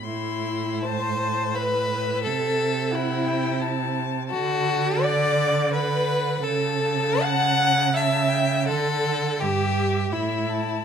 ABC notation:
X:1
M:3/4
L:1/8
Q:1/4=84
K:Ador
V:1 name="Violin"
c'2 a a e2- | e2 f g a2 | [K:D] a2 f2 f2 | a4 a g |
f2 e2 e a |]
V:2 name="Viola"
E2 c2 B2 | A2 E3 z | [K:D] F2 d2 B2 | A2 f2 e2 |
A2 G2 E2 |]
V:3 name="Violin"
E2 c2 B2 | A2 E3 z | [K:D] F2 d2 B2 | A2 f2 e2 |
A2 G2 E2 |]
V:4 name="Cello" clef=bass
A,,6 | C,6 | [K:D] D,6 | C,6 |
D,2 G,,2 A,,2 |]